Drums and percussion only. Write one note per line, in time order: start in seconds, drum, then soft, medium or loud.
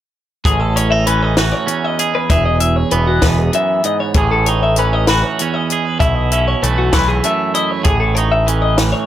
0.45 kick loud
0.45 closed hi-hat medium
0.77 closed hi-hat medium
1.07 closed hi-hat medium
1.37 snare loud
1.37 closed hi-hat medium
1.68 closed hi-hat medium
1.99 closed hi-hat medium
2.30 kick loud
2.30 closed hi-hat medium
2.60 closed hi-hat medium
2.91 closed hi-hat medium
3.22 kick medium
3.22 snare loud
3.22 closed hi-hat medium
3.53 closed hi-hat medium
3.84 closed hi-hat medium
4.14 kick loud
4.14 closed hi-hat medium
4.46 closed hi-hat medium
4.76 closed hi-hat medium
5.07 snare loud
5.07 closed hi-hat medium
5.39 closed hi-hat medium
5.70 closed hi-hat medium
6.00 kick loud
6.00 closed hi-hat medium
6.32 closed hi-hat medium
6.63 closed hi-hat medium
6.93 kick medium
6.93 snare loud
6.93 closed hi-hat medium
7.24 closed hi-hat medium
7.55 closed hi-hat medium
7.84 kick loud
7.84 closed hi-hat medium
8.16 closed hi-hat medium
8.48 closed hi-hat medium
8.78 snare loud
8.78 closed hi-hat medium